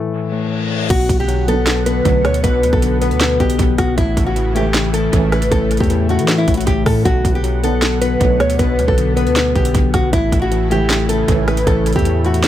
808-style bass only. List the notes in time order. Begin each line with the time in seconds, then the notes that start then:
0.90 B1
1.09 B1
2.05 B1
2.25 D2
2.44 B1
2.63 D2
2.73 B1
3.11 D2
3.40 B1
3.59 B1
3.79 B1
3.98 A1
4.17 A1
5.13 A1
5.52 A1
5.80 E2
6.19 E3
6.48 A1
6.67 A1
6.86 A2
7.05 B1
7.25 B1
8.21 B1
8.40 D2
8.59 B1
8.79 D2
8.88 B1
9.27 D2
9.56 B1
9.75 B1
9.94 B1
10.13 A1
10.32 A1
11.28 A1
11.67 A1
11.96 E2